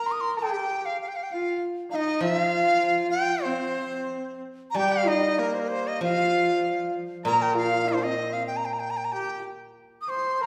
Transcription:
Already playing: A#4
0.06 C6
0.11 D#6
0.21 C6
0.37 G4 A#5
0.42 G5
0.85 F5
1.01 F5
1.08 G5
1.16 F5
1.23 G5
1.31 F4 F5
1.91 D#4 F5
1.95 D#5
2.21 F3 F4 E5
2.38 F5
3.10 G5
3.42 C4 C5
4.71 G3 A#5
4.75 G4 G5
4.92 F5
5.06 D#4 D#5
5.38 A#3 A#4
5.54 C5
5.60 A#4
5.68 C5
5.87 D#5
6.01 F3 F4 F5
7.25 A#2 A#4 A#5
7.42 G5
7.56 F4 F5
7.87 C4 C5
8.03 D#5
8.33 F5
8.47 G5
8.56 A#5
8.65 G5
8.73 A#5
8.79 G5
8.90 A#5
8.97 G5
9.04 A#5
9.12 G4 G5
10.01 D#6
10.09 C5 C6
10.40 A#4 A#5

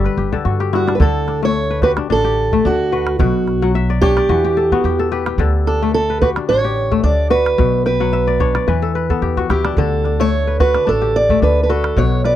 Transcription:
Already playing: G2 D3 G3 A3 G4 A4 C#5 D5
0.05 B4, calabash click
0.17 G1 G4
0.32 D3 A4, calabash thump
0.45 G2 F#4
0.60 G4, calabash click
0.73 G2 E4 F#4, calabash click
0.87 D4, calabash click
0.95 B4
1.00 D2 D3 A4, calabash thump
1.28 D4, calabash click
1.43 A3 C#5
1.70 B4
1.82 F#4 G4 B4, calabash thump
1.97 D4, calabash click
2.10 A1 D4 A4
2.24 G4
2.52 A3, calabash thump
2.65 D2 D4 F#4
2.92 F#4 B4
3.07 calabash click
3.19 B1 B2 F#4, calabash thump
3.48 calabash click
3.62 F#3 F#5
3.75 E5
3.90 D5
4.02 D4 G4 C#5, calabash thump
4.17 D5, calabash click
4.29 E2 E3 F#4
4.44 G4
4.57 A4
4.72 B3 F#4, calabash thump
4.84 E2 G4
4.99 A4
5.12 G4 B4
5.26 G4, calabash click
5.38 D2 D3 A4, calabash thump
5.67 D4 A4, calabash click
5.82 A3
5.94 A4
6.10 B4
6.22 F#4 G4 B4, calabash thump
6.36 D4, calabash click
6.49 A1 D4 C#5
6.64 G4
6.92 A3, calabash thump
7.03 D2 D4 D5
7.30 F#4 B4
7.46 calabash click
7.58 B1 B2, calabash thump
7.86 B4 G5, calabash click
8.00 F#3 F#5
8.13 E5, calabash click
8.27 D5
8.40 D4 C#5, calabash thump
8.55 D5, calabash click
8.67 E2 E3 B4
8.82 A4
8.95 B4
9.10 B3 A4, calabash thump
9.22 E2 G4, calabash thump
9.37 F#4, calabash thump
9.50 D2 E4 G4, calabash click
9.65 D4, calabash click
9.77 D2 D3 A4, calabash thump
10.04 D4, calabash click
10.20 A3 C#5
10.47 B4
10.60 F#4 B4, calabash thump
10.75 D4, calabash click
10.87 A1 D4 A4
11.02 G4
11.16 D5
11.29 A3, calabash thump
11.42 D2 D4 B4
11.63 B4
11.69 F#4 A4 B4
11.84 calabash click
11.97 B1 B2 C#5 F#5, calabash thump
12.24 B4 D5, calabash click

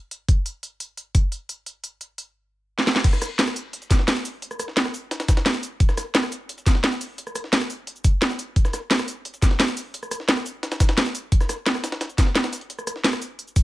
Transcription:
0.11 closed hi-hat
0.28 kick, closed hi-hat
0.46 closed hi-hat
0.63 closed hi-hat
0.80 closed hi-hat
0.97 closed hi-hat
1.15 kick, closed hi-hat
1.32 closed hi-hat
1.49 closed hi-hat
1.66 closed hi-hat
1.84 closed hi-hat
2.01 closed hi-hat
2.18 closed hi-hat
2.78 snare
2.87 snare
2.96 snare
3.04 kick, closed hi-hat, crash
3.13 cross-stick, snare, shaker
3.22 cross-stick, snare, closed hi-hat, shaker
3.39 snare, closed hi-hat
3.47 cross-stick, shaker
3.56 closed hi-hat, shaker
3.73 closed hi-hat
3.82 closed hi-hat, shaker
3.90 kick, snare, closed hi-hat, shaker
3.99 snare
4.08 snare, closed hi-hat
4.16 closed hi-hat, shaker
4.25 closed hi-hat, open hi-hat, shaker
4.42 closed hi-hat
4.51 cross-stick, shaker
4.59 cross-stick, closed hi-hat, shaker
4.68 snare
4.77 snare, closed hi-hat
4.85 cross-stick, shaker
4.94 closed hi-hat, open hi-hat, shaker
5.11 snare, closed hi-hat
5.20 snare, closed hi-hat, shaker
5.28 kick, snare, closed hi-hat, shaker
5.37 snare, closed hi-hat
5.46 snare, closed hi-hat
5.54 snare, shaker
5.63 closed hi-hat, shaker
5.80 kick, closed hi-hat
5.89 cross-stick, snare, shaker
5.97 cross-stick, snare, closed hi-hat, shaker
6.15 snare, closed hi-hat
6.23 cross-stick, shaker
6.32 closed hi-hat, shaker
6.49 closed hi-hat
6.58 closed hi-hat, shaker
6.66 kick, snare, closed hi-hat, shaker
6.75 snare
6.84 snare, closed hi-hat
6.92 closed hi-hat, shaker
7.01 closed hi-hat, open hi-hat, shaker
7.18 closed hi-hat
7.27 cross-stick, shaker
7.35 cross-stick, closed hi-hat, shaker
7.44 snare
7.53 snare, closed hi-hat
7.61 cross-stick, shaker
7.70 closed hi-hat, open hi-hat, shaker
7.87 closed hi-hat
7.96 shaker
8.04 kick, closed hi-hat, shaker
8.22 snare, closed hi-hat
8.30 snare, shaker
8.39 closed hi-hat, shaker
8.56 kick, closed hi-hat
8.65 cross-stick, snare, shaker
8.73 cross-stick, snare, closed hi-hat, shaker
8.91 snare, closed hi-hat
8.99 cross-stick, shaker
9.08 closed hi-hat, shaker
9.25 closed hi-hat
9.34 closed hi-hat, shaker
9.42 kick, snare, closed hi-hat, shaker
9.51 snare
9.60 snare, closed hi-hat
9.68 closed hi-hat, shaker
9.77 closed hi-hat, open hi-hat, shaker
9.94 closed hi-hat
10.03 cross-stick, shaker
10.11 cross-stick, closed hi-hat, shaker
10.20 snare
10.29 snare, closed hi-hat
10.37 cross-stick, shaker
10.46 closed hi-hat, open hi-hat, shaker
10.63 snare, closed hi-hat
10.72 snare, closed hi-hat, shaker
10.80 kick, snare, closed hi-hat, shaker
10.89 snare, closed hi-hat
10.97 snare, closed hi-hat
11.06 snare, shaker
11.15 closed hi-hat, shaker
11.32 kick, closed hi-hat
11.41 cross-stick, snare, shaker
11.49 cross-stick, snare, closed hi-hat, shaker
11.66 snare, closed hi-hat
11.75 cross-stick, shaker
11.84 snare, closed hi-hat, shaker
11.92 snare, closed hi-hat
12.01 snare, closed hi-hat
12.10 closed hi-hat, shaker
12.18 kick, snare, closed hi-hat, shaker
12.27 snare
12.35 snare, closed hi-hat
12.44 snare, closed hi-hat, shaker
12.53 snare, closed hi-hat, shaker
12.61 closed hi-hat
12.70 closed hi-hat
12.79 cross-stick, shaker
12.87 cross-stick, closed hi-hat, shaker
12.96 snare
13.04 snare, closed hi-hat
13.13 cross-stick, shaker
13.22 closed hi-hat, open hi-hat, shaker
13.39 closed hi-hat
13.48 shaker
13.56 kick, closed hi-hat, shaker

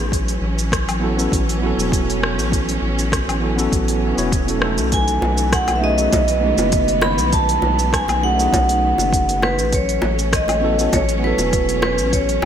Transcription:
Already playing: A1 D#4 F#4 G#4
0.12 E3 F#3 C#4, kick, open hi-hat, cabasa
0.28 open hi-hat, cabasa
0.41 A1
0.59 open hi-hat, cabasa
0.72 kick, cross-stick, open hi-hat, cabasa
0.87 A1, open hi-hat, cabasa, low woodblock
1.00 B3 C#4 E4 F#4 A4
1.16 B3 C#4 E4 F#4 A4, open hi-hat, cabasa
1.32 A1, kick, open hi-hat, cabasa
1.49 open hi-hat, cabasa
1.58 B3 C#4 E4
1.64 F#4 A4
1.77 E1, open hi-hat, cabasa
1.92 kick, open hi-hat, cabasa
2.10 open hi-hat, cabasa
2.23 cross-stick
2.37 A1, open hi-hat, cabasa
2.52 kick, open hi-hat, cabasa
2.69 open hi-hat, cabasa
2.82 A1
2.99 open hi-hat, cabasa
3.12 kick, cross-stick, open hi-hat, cabasa
3.28 A1, open hi-hat, cabasa, low woodblock
3.40 B3 C#4 E4 F#4 A4
3.56 B3 C#4 E4 F#4 A4, open hi-hat, cabasa
3.72 A1, kick, open hi-hat, cabasa
3.88 open hi-hat, cabasa
4.15 E1 B3 C#4 E4 F#4 C#5, open hi-hat, cabasa
4.32 kick, open hi-hat, cabasa
4.46 B3 C#4 E4 F#4, open hi-hat, cabasa
4.50 A4
4.57 A3 C#4
4.61 D#4 F#4 A4, cross-stick
4.78 B1, open hi-hat, cabasa
4.92 D#3 B3 G#5, kick, open hi-hat, cabasa
5.08 open hi-hat, cabasa
5.22 B1, high bongo
5.38 open hi-hat, cabasa
5.52 F#5, kick, cross-stick, open hi-hat, cabasa
5.68 B1, open hi-hat, high bongo, cabasa, low woodblock
5.76 E5
5.80 A3 C#4 D#4 F#4 G#4 D#5
5.96 A3 C#4 D#4 F#4 G#4, open hi-hat, cabasa
6.13 B1, kick, open hi-hat, high bongo, cabasa
6.28 open hi-hat, cabasa
6.39 A3 C#4 D#4
6.45 G#3 F#4
6.57 F#1, open hi-hat, high bongo, cabasa
6.72 kick, open hi-hat, cabasa
6.88 open hi-hat, cabasa
7.01 B5, cross-stick, high bongo
7.18 B1, open hi-hat, cabasa
7.33 A5, kick, open hi-hat, cabasa
7.49 open hi-hat, cabasa
7.62 B1, high bongo
7.79 open hi-hat, cabasa
7.93 G#5, kick, cross-stick, open hi-hat, cabasa
8.08 B1, open hi-hat, high bongo, cabasa, low woodblock
8.21 A3 C#4 D#4 F#4 G#4 F#5
8.34 A3 C#4 D#4
8.40 F#4 G#4, open hi-hat, cabasa
8.52 B1, kick, open hi-hat, high bongo, cabasa
8.69 open hi-hat, cabasa
8.98 F#1, open hi-hat, high bongo, cabasa
9.12 kick, open hi-hat, cabasa
9.29 open hi-hat, cabasa
9.42 B4, cross-stick, high bongo
9.59 A1, open hi-hat, cabasa
9.73 F#3 A3 C#4 C#5, kick, open hi-hat, cabasa
9.89 open hi-hat, cabasa
10.02 A1, high bongo
10.19 open hi-hat, cabasa
10.33 D#5, kick, cross-stick, open hi-hat, cabasa
10.48 A1, open hi-hat, high bongo, cabasa, low woodblock
10.61 B3 C#4 E4 F#4 A4
10.77 B3 C#4 E4 F#4 A4, open hi-hat, cabasa
10.93 A1 C#5, kick, open hi-hat, high bongo, cabasa
11.09 open hi-hat, cabasa
11.18 B3 C#4 C#5
11.23 E4 F#4 B4
11.27 A4
11.38 E1, open hi-hat, high bongo, cabasa
11.53 kick, open hi-hat, cabasa
11.69 open hi-hat, cabasa
11.82 B4, cross-stick, high bongo
11.98 A1, open hi-hat, cabasa
12.13 C#5, kick, open hi-hat, cabasa
12.29 open hi-hat, cabasa

